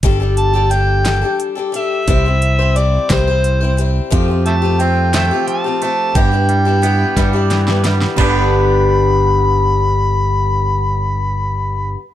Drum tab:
CC |------------|------------|------------|------------|
HH |x-x-x-x-x-x-|x-x-x-x-x-x-|x-x-x-x-x-x-|x-x-x-x-x-x-|
SD |------o-----|------o-----|------o-----|------o-oooo|
BD |o-----------|o-----o-----|o-----------|o-----o-----|

CC |x-----------|------------|
HH |------------|------------|
SD |------------|------------|
BD |o-----------|------------|